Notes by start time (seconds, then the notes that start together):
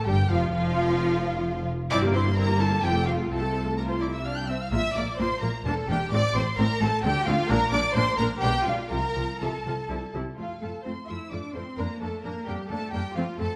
0.05 G1 G2 G3 G4 G5
0.28 F1 F2 F3 F4 F5
0.52 F1 F2 F3 F4 F5
1.90 G1 G2 C4 E4 D5 D6
2.03 A#3 G4
2.13 C4 E4 C5 C6
2.26 A#3 G4
2.36 C4 E4 A#4 A#5
2.48 A#3 G4
2.59 C4 E4 A4 A5
2.71 A#3 G4
2.82 F1 F2 C4 F4 G4 G5
2.94 A3 A4
3.06 C4 F4 F5
3.18 A3 A4
3.29 C2 C3 C4 F4 A4 A5
3.42 A3 A4
3.53 C4 F4
3.65 A3 A4
3.77 F4 A#4 A#5
3.88 C5 C6
4.00 E4 D5 D6
4.12 E5 E6
4.25 D4 F5 F6
4.35 G5 G6
4.48 C4 E5 E6
4.61 F5 F6
4.72 A#1 A#2 A#3 F4 E5 E6
4.95 A#1 A#2 A#3 F4 D5 D6
5.18 A#1 A#2 A#3 F4 C5 C6
5.41 A#1 A#2 A#3 F4 A#4 A#5
5.65 E1 E2 A#3 D4 A4 A5
5.88 E1 E2 A#3 D4 G4 G5
6.11 A1 A2 A3 C4 D5 D6
6.34 A1 A2 A3 C4 C5 C6
6.57 A1 A2 A3 C4 A#4 A#5
6.80 A1 A2 A3 C4 A4 A5
7.03 D2 D3 A3 C4 G4 G5
7.26 D2 D3 A3 C4 F4 F5
7.49 A#1 A#2 A#3 D4 A#4 A#5
7.71 A#1 A#2 A#3 D4 D5 D6
7.94 A#1 A#2 A#3 D4 C5 C6
8.17 A#1 A#2 A#3 D4 A#4 A#5
8.41 B1 B2 G#3 D4 G4 G5
8.64 B1 B2 G#3 D4 F4 F5
8.90 C2 C3 F3 F4 A#4 A#5
9.16 C2 C3 F3 F4
9.40 C2 C3 F3 F4 A4 A5
9.65 C2 C3 F3 F4
9.89 C2 C3 G3 E4
10.14 C2 C3 G3 E4
10.36 F2 F3 A3 F4 F5
10.60 F2 A3 F4 A4 A5
10.82 F2 A3 C4 F4 C5
10.86 C6
11.06 F2 A3 E4 F4 E5 E6
11.31 F2 A3 D4 F4 D5 D6
11.54 F2 A3 C4 F4 C5 C6
11.77 F2 A#3 D4 A#4 A#5
12.01 F2 A3 A#3 D4 A4 A5
12.23 F2 A#3 D4 A#4 A#5
12.47 F2 G3 A#3 D4 G4 G5
12.69 F2 A3 A#3 D4 A4 A5
12.92 F2 G3 A#3 D4 G4 G5
13.15 F2 F3 A3 C4 F4 F5
13.38 F2 A3 C4 A4 A5